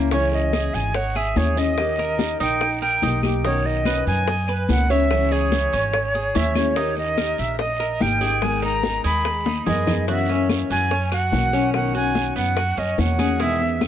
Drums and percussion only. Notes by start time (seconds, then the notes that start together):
0.11 high bongo, long guiro
0.32 high bongo, high conga
0.53 high bongo, high conga, short guiro, claves
0.74 short guiro
0.94 high bongo, high conga, long guiro
1.15 high bongo, high conga, claves
1.36 high bongo, low bongo, high conga, short guiro
1.57 high bongo, high conga, short guiro
1.77 high bongo, high conga, long guiro, claves
1.98 high bongo, high conga
2.19 high bongo, high conga, short guiro
2.40 short guiro
2.61 high bongo, high conga, long guiro, claves
2.82 high bongo, high conga
3.02 high bongo, low bongo, high conga, short guiro
3.23 high bongo, high conga, short guiro, claves
3.44 high bongo, long guiro
3.65 high bongo, high conga
3.85 high bongo, high conga, short guiro, claves
4.07 short guiro
4.27 high bongo, high conga, long guiro
4.48 high bongo, high conga, claves
4.69 high bongo, low bongo, high conga, short guiro
4.90 high bongo, high conga, short guiro
5.11 high bongo, high conga, long guiro, claves
5.31 high bongo, high conga
5.52 high bongo, high conga, short guiro
5.73 short guiro
5.93 high bongo, high conga, long guiro, claves
6.15 high bongo, high conga
6.35 high bongo, low bongo, high conga, short guiro
6.55 high bongo, high conga, short guiro, claves
6.76 high bongo, long guiro
6.97 high bongo, high conga
7.18 high bongo, high conga, short guiro, claves
7.38 short guiro
7.59 high bongo, high conga, long guiro
7.80 high bongo, high conga, claves
8.01 high bongo, low bongo, high conga, short guiro
8.21 high bongo, high conga, short guiro
8.42 high bongo, high conga, long guiro, claves
8.63 high bongo, high conga
8.83 high bongo, high conga, short guiro
9.05 short guiro
9.25 high bongo, high conga, long guiro, claves
9.46 high bongo, high conga
9.67 low bongo, low conga, short guiro
9.87 low bongo, low conga, short guiro, claves
10.08 high bongo, high conga, long guiro
10.29 high bongo, high conga
10.49 high bongo, high conga, short guiro, claves
10.71 short guiro
10.91 high bongo, high conga, long guiro
11.12 high bongo, high conga, claves
11.32 high bongo, low bongo, high conga, short guiro
11.53 high bongo, high conga, short guiro
11.74 high bongo, high conga, long guiro, claves
11.94 high bongo, high conga
12.15 high bongo, high conga, short guiro
12.37 short guiro
12.57 high bongo, high conga, long guiro, claves
12.78 high bongo, high conga
12.98 high bongo, low bongo, high conga, short guiro
13.19 high bongo, high conga, short guiro, claves
13.40 high bongo, high conga, long guiro
13.60 high bongo, high conga
13.81 high bongo, high conga, short guiro, claves